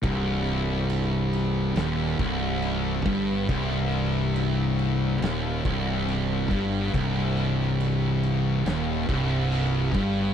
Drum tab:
CC |x-x-x-x-x-x-x-x-|x-x-x-x-x-x-x-x-|x-x-x-x-x-x-x-x-|
SD |--------o-------|--------o-------|-o------o-------|
BD |o---------o---o-|o---------o---o-|o---------o---o-|